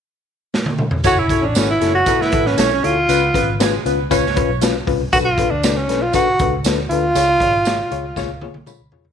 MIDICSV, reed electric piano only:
0, 0, Header, 1, 2, 480
1, 0, Start_track
1, 0, Key_signature, 3, "minor"
1, 0, Tempo, 508475
1, 986, Time_signature, 4, 2, 24, 8
1, 8613, End_track
2, 0, Start_track
2, 0, Title_t, "Reed electric piano"
2, 0, Program_c, 0, 4
2, 991, Note_on_c, 0, 64, 81
2, 992, Note_on_c, 0, 66, 77
2, 996, Note_on_c, 0, 69, 93
2, 1113, Note_off_c, 0, 64, 0
2, 1113, Note_off_c, 0, 66, 0
2, 1116, Note_off_c, 0, 69, 0
2, 1235, Note_on_c, 0, 64, 67
2, 1237, Note_on_c, 0, 66, 60
2, 1239, Note_on_c, 0, 69, 76
2, 1356, Note_off_c, 0, 64, 0
2, 1357, Note_off_c, 0, 66, 0
2, 1358, Note_off_c, 0, 69, 0
2, 1477, Note_on_c, 0, 64, 63
2, 1480, Note_on_c, 0, 66, 57
2, 1484, Note_on_c, 0, 69, 70
2, 1598, Note_off_c, 0, 64, 0
2, 1599, Note_off_c, 0, 66, 0
2, 1601, Note_off_c, 0, 69, 0
2, 1713, Note_on_c, 0, 64, 67
2, 1714, Note_on_c, 0, 66, 60
2, 1716, Note_on_c, 0, 69, 79
2, 1836, Note_off_c, 0, 64, 0
2, 1837, Note_off_c, 0, 66, 0
2, 1838, Note_off_c, 0, 69, 0
2, 1955, Note_on_c, 0, 64, 91
2, 1963, Note_on_c, 0, 69, 94
2, 1965, Note_on_c, 0, 66, 76
2, 2078, Note_off_c, 0, 64, 0
2, 2082, Note_off_c, 0, 69, 0
2, 2083, Note_off_c, 0, 66, 0
2, 2194, Note_on_c, 0, 64, 70
2, 2199, Note_on_c, 0, 66, 62
2, 2203, Note_on_c, 0, 69, 77
2, 2319, Note_off_c, 0, 64, 0
2, 2321, Note_off_c, 0, 66, 0
2, 2323, Note_off_c, 0, 69, 0
2, 2429, Note_on_c, 0, 64, 71
2, 2433, Note_on_c, 0, 66, 68
2, 2436, Note_on_c, 0, 69, 78
2, 2557, Note_off_c, 0, 64, 0
2, 2559, Note_off_c, 0, 66, 0
2, 2560, Note_off_c, 0, 69, 0
2, 2675, Note_on_c, 0, 64, 71
2, 2676, Note_on_c, 0, 66, 63
2, 2679, Note_on_c, 0, 69, 76
2, 2800, Note_off_c, 0, 64, 0
2, 2801, Note_off_c, 0, 66, 0
2, 2802, Note_off_c, 0, 69, 0
2, 2914, Note_on_c, 0, 61, 83
2, 2917, Note_on_c, 0, 49, 56
2, 2920, Note_on_c, 0, 65, 75
2, 2921, Note_on_c, 0, 71, 88
2, 3040, Note_off_c, 0, 61, 0
2, 3043, Note_off_c, 0, 65, 0
2, 3043, Note_off_c, 0, 71, 0
2, 3155, Note_on_c, 0, 61, 68
2, 3155, Note_on_c, 0, 65, 57
2, 3156, Note_on_c, 0, 71, 76
2, 3281, Note_off_c, 0, 61, 0
2, 3281, Note_off_c, 0, 65, 0
2, 3282, Note_off_c, 0, 71, 0
2, 3397, Note_on_c, 0, 61, 74
2, 3400, Note_on_c, 0, 71, 88
2, 3401, Note_on_c, 0, 65, 77
2, 3522, Note_off_c, 0, 61, 0
2, 3524, Note_off_c, 0, 65, 0
2, 3524, Note_off_c, 0, 71, 0
2, 3602, Note_off_c, 0, 49, 0
2, 3640, Note_on_c, 0, 61, 82
2, 3643, Note_on_c, 0, 65, 77
2, 3648, Note_on_c, 0, 71, 89
2, 3764, Note_off_c, 0, 61, 0
2, 3766, Note_off_c, 0, 65, 0
2, 3768, Note_off_c, 0, 71, 0
2, 3879, Note_on_c, 0, 61, 108
2, 3882, Note_on_c, 0, 65, 95
2, 3883, Note_on_c, 0, 71, 118
2, 4004, Note_off_c, 0, 61, 0
2, 4006, Note_off_c, 0, 65, 0
2, 4006, Note_off_c, 0, 71, 0
2, 4115, Note_on_c, 0, 61, 83
2, 4121, Note_on_c, 0, 65, 75
2, 4121, Note_on_c, 0, 71, 98
2, 4242, Note_off_c, 0, 61, 0
2, 4245, Note_off_c, 0, 65, 0
2, 4245, Note_off_c, 0, 71, 0
2, 4355, Note_on_c, 0, 61, 81
2, 4359, Note_on_c, 0, 65, 84
2, 4362, Note_on_c, 0, 71, 89
2, 4482, Note_off_c, 0, 61, 0
2, 4484, Note_off_c, 0, 65, 0
2, 4486, Note_off_c, 0, 71, 0
2, 4597, Note_on_c, 0, 61, 79
2, 4597, Note_on_c, 0, 65, 73
2, 4604, Note_on_c, 0, 71, 87
2, 4723, Note_off_c, 0, 61, 0
2, 4723, Note_off_c, 0, 65, 0
2, 4726, Note_off_c, 0, 71, 0
2, 4843, Note_on_c, 0, 47, 59
2, 4843, Note_on_c, 0, 62, 89
2, 4847, Note_on_c, 0, 69, 84
2, 4852, Note_on_c, 0, 71, 97
2, 4966, Note_off_c, 0, 62, 0
2, 4968, Note_off_c, 0, 69, 0
2, 4970, Note_off_c, 0, 71, 0
2, 5084, Note_on_c, 0, 62, 68
2, 5086, Note_on_c, 0, 69, 61
2, 5092, Note_on_c, 0, 71, 79
2, 5206, Note_off_c, 0, 62, 0
2, 5207, Note_off_c, 0, 69, 0
2, 5210, Note_off_c, 0, 71, 0
2, 5327, Note_on_c, 0, 62, 68
2, 5330, Note_on_c, 0, 69, 58
2, 5334, Note_on_c, 0, 71, 70
2, 5447, Note_off_c, 0, 62, 0
2, 5449, Note_off_c, 0, 69, 0
2, 5450, Note_off_c, 0, 71, 0
2, 5523, Note_off_c, 0, 47, 0
2, 5554, Note_on_c, 0, 62, 67
2, 5560, Note_on_c, 0, 69, 59
2, 5564, Note_on_c, 0, 71, 80
2, 5680, Note_off_c, 0, 62, 0
2, 5683, Note_off_c, 0, 69, 0
2, 5685, Note_off_c, 0, 71, 0
2, 5791, Note_on_c, 0, 62, 95
2, 5797, Note_on_c, 0, 69, 78
2, 5802, Note_on_c, 0, 71, 98
2, 5918, Note_off_c, 0, 62, 0
2, 5921, Note_off_c, 0, 69, 0
2, 5924, Note_off_c, 0, 71, 0
2, 6048, Note_on_c, 0, 62, 74
2, 6048, Note_on_c, 0, 69, 68
2, 6055, Note_on_c, 0, 71, 76
2, 6166, Note_off_c, 0, 62, 0
2, 6166, Note_off_c, 0, 69, 0
2, 6170, Note_off_c, 0, 71, 0
2, 6283, Note_on_c, 0, 62, 75
2, 6285, Note_on_c, 0, 69, 63
2, 6290, Note_on_c, 0, 71, 78
2, 6403, Note_off_c, 0, 62, 0
2, 6404, Note_off_c, 0, 69, 0
2, 6406, Note_off_c, 0, 71, 0
2, 6527, Note_on_c, 0, 62, 69
2, 6528, Note_on_c, 0, 69, 63
2, 6534, Note_on_c, 0, 71, 73
2, 6644, Note_off_c, 0, 62, 0
2, 6644, Note_off_c, 0, 69, 0
2, 6647, Note_off_c, 0, 71, 0
2, 6757, Note_on_c, 0, 65, 90
2, 6758, Note_on_c, 0, 68, 78
2, 6760, Note_on_c, 0, 49, 58
2, 6763, Note_on_c, 0, 73, 93
2, 6879, Note_off_c, 0, 65, 0
2, 6879, Note_off_c, 0, 68, 0
2, 6881, Note_off_c, 0, 73, 0
2, 7002, Note_on_c, 0, 65, 69
2, 7006, Note_on_c, 0, 68, 67
2, 7007, Note_on_c, 0, 73, 75
2, 7120, Note_off_c, 0, 65, 0
2, 7122, Note_off_c, 0, 68, 0
2, 7123, Note_off_c, 0, 73, 0
2, 7237, Note_on_c, 0, 68, 67
2, 7238, Note_on_c, 0, 65, 81
2, 7245, Note_on_c, 0, 73, 89
2, 7357, Note_off_c, 0, 65, 0
2, 7357, Note_off_c, 0, 68, 0
2, 7361, Note_off_c, 0, 73, 0
2, 7434, Note_off_c, 0, 49, 0
2, 7469, Note_on_c, 0, 65, 85
2, 7474, Note_on_c, 0, 68, 74
2, 7478, Note_on_c, 0, 73, 93
2, 7592, Note_off_c, 0, 65, 0
2, 7594, Note_off_c, 0, 68, 0
2, 7596, Note_off_c, 0, 73, 0
2, 7712, Note_on_c, 0, 65, 111
2, 7716, Note_on_c, 0, 68, 92
2, 7719, Note_on_c, 0, 73, 115
2, 7832, Note_off_c, 0, 65, 0
2, 7834, Note_off_c, 0, 68, 0
2, 7836, Note_off_c, 0, 73, 0
2, 7952, Note_on_c, 0, 65, 81
2, 7955, Note_on_c, 0, 68, 80
2, 7958, Note_on_c, 0, 73, 90
2, 8071, Note_off_c, 0, 65, 0
2, 8073, Note_off_c, 0, 68, 0
2, 8074, Note_off_c, 0, 73, 0
2, 8183, Note_on_c, 0, 65, 82
2, 8185, Note_on_c, 0, 68, 76
2, 8187, Note_on_c, 0, 83, 70
2, 8188, Note_on_c, 0, 73, 91
2, 8306, Note_off_c, 0, 65, 0
2, 8307, Note_off_c, 0, 68, 0
2, 8308, Note_off_c, 0, 73, 0
2, 8424, Note_on_c, 0, 65, 81
2, 8428, Note_on_c, 0, 68, 76
2, 8431, Note_on_c, 0, 73, 90
2, 8545, Note_off_c, 0, 65, 0
2, 8547, Note_off_c, 0, 68, 0
2, 8549, Note_off_c, 0, 73, 0
2, 8613, Note_off_c, 0, 83, 0
2, 8613, End_track
0, 0, End_of_file